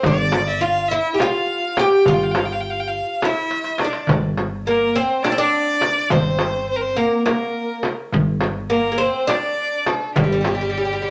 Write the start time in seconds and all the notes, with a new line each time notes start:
0.03 G1 D4 D5, frame drum, darbuka dum
0.18 darbuka ka
0.32 darbuka tek, frame drum
0.47 D5 E5
0.52 E5
0.61 F4 F5
0.88 E4 E5
1.14 G4
1.18 F4 F5, darbuka tek, frame drum
1.77 G4 G5, darbuka tek, frame drum
2.06 G1 F4 F5, frame drum, darbuka dum
2.14 G5
2.21 F5, darbuka ka
2.31 G5, frame drum
2.36 F5, darbuka tek
2.45 G5
2.53 F5
2.60 G5
2.71 F5
2.80 G5
2.88 F5
2.94 darbuka ka
3.22 E4 E5, darbuka tek, frame drum
3.51 darbuka tek
3.64 darbuka ka
3.78 D5, darbuka tek, frame drum
3.85 D4
3.93 darbuka ka
4.07 G1, darbuka dum, frame drum
4.23 darbuka ka
4.38 frame drum
4.67 A#3 A#4
4.95 C4 C5, darbuka ka
5.23 D4 D5, darbuka tek, frame drum
5.32 C4
5.38 D4 D5
5.81 darbuka tek, frame drum
6.10 G1 C4 C5, frame drum, darbuka dum
6.26 darbuka ka
6.39 darbuka tek, frame drum
6.69 C5
6.76 A#4
6.82 C5
6.96 A#3 A#4, darbuka ka
7.26 A#3 A#4, darbuka tek, frame drum
7.83 darbuka tek, frame drum
8.12 G1, frame drum, darbuka dum
8.29 darbuka ka
8.41 darbuka tek, frame drum
8.70 A#3 A#4
8.92 A#3
8.98 C4
9.02 C5
9.27 D4 D5, darbuka tek, frame drum
9.86 A4, darbuka tek, frame drum
10.16 G1 G3 G4, darbuka dum, frame drum
10.24 G3
10.32 G3, darbuka ka
10.41 G3, frame drum
10.45 G3, darbuka tek
10.55 G3
10.61 G3
10.70 G3
10.78 G3
10.85 G3
10.93 G3
11.02 G3, darbuka ka